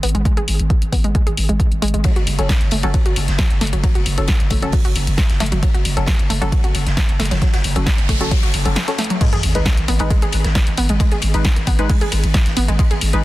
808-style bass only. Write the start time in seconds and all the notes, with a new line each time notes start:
0.03 G#1
0.14 G#1
0.37 G#1
0.48 G#1
0.59 G#1
0.82 G#1
0.92 G#1
1.04 G#1
1.27 G#1
1.37 G#1
1.49 G#1
1.71 G#1
1.82 G#1
1.94 G#1
2.16 F#1
2.27 F#1
2.38 F#1
2.61 F#1
2.72 F#1
2.83 F#1
3.06 F#1
3.16 F#1
3.28 F#1
3.50 F#1
3.61 F#1
3.73 F#1
3.95 F#1
4.06 F#1
4.18 F#1
4.40 F#1
4.51 F#1
4.62 F#1
4.85 F#1
4.96 F#1
5.07 F#1
5.30 F#1
5.40 F#1
5.52 F#1
5.74 F#1
5.85 F#1
5.97 F#1
6.19 F#1
6.30 F#1
6.42 F#1
6.64 F#1
6.75 F#1
6.86 F#1
7.09 F#1
7.19 F#1
7.31 F#1
7.54 F#1
7.64 F#1
7.76 F#1
7.98 F#1
8.09 F#1
8.21 F#1
8.43 F#1
8.54 F#1
8.66 F#1
9.33 G#1
9.43 G#1
9.55 G#1
9.78 G#1
9.88 G#1
10.00 G#1
10.22 G#1
10.33 G#1
10.45 G#1
10.67 G#1
10.78 G#1
10.89 G#1
11.12 G#1
11.22 G#1
11.34 G#1
11.57 G#1
11.67 G#1
11.79 G#1
12.01 G#1
12.12 G#1
12.24 G#1
12.46 G#1
12.57 G#1
12.68 G#1
12.91 G#1
13.02 G#1
13.13 G#1